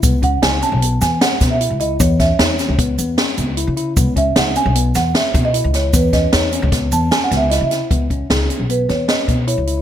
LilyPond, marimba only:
\new Staff \with { instrumentName = "Marimba" } { \time 5/4 \key cis \minor \tempo 4 = 152 r8 fis''8 gis''8 a''4 gis''8 fis''8. e''8. dis''8 | cis''8 e''8 cis''4 r2. | r8 e''8 fis''8 gis''4 fis''8 e''8. dis''8. cis''8 | b'8 dis''8 cis''4 r8 a''8 \tuplet 3/2 { gis''8 fis''8 e''8 dis''8 e''4 } |
r4 gis'4 b'8 cis''8 dis''4 cis''4 | }